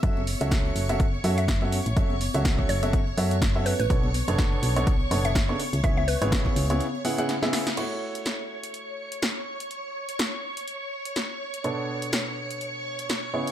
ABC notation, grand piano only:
X:1
M:4/4
L:1/16
Q:"Swing 16ths" 1/4=124
K:F#m
V:1 name="Grand piano"
[F,CFAe] z2 [F,CFAe]4 [F,CFAe] z2 [F,CFAe] z2 [F,CFAe] z2 | [F,CFAe] z2 [F,CFAe]4 [F,CFAe] z2 [F,CFAe] z2 [F,CFAe] z2 | [B,,B,DAc] z2 [B,,B,DAc]4 [B,,B,DAc] z2 [B,,B,DAc] z2 [C,B,DAc] z2 | [C,B,EGc] z2 [C,B,EGc]4 [C,B,EGc] z2 [C,B,EGf] [C,B,EGf] z [C,B,EGe]2 z |
[A,EFc]16- | [A,EFc]16 | [B,,B,DAc]12- [B,,B,DAc]2 [C,B,EGc]2 |]